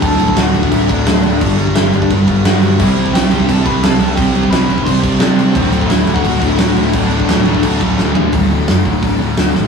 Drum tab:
CC |x-x-x-x-x-x-x-x-|x-x-x-x-x-x-x-x-|x-x-x-x-x-x-x-x-|x-x-x-x-x-x-x-x-|
HH |----------------|----------------|----------------|----------------|
SD |----o-------o---|----o-------o---|----o-------o---|----o-------o---|
FT |----------------|----------------|----------------|----------------|
BD |o--o---oo-o-----|o--o---oo-o-----|o--o---oo-o-----|o--o---oo-o-----|

CC |x-x-x-x-x-x-x-x-|x-x-x-x-x-x-----|----------------|
HH |----------------|----------------|o---o---o---o---|
SD |----o-------o---|----o-------o---|----o-------o-o-|
FT |----------------|--------------o-|----------------|
BD |o--o---oo-o-----|o--o---oo-o-----|o-----o-o-------|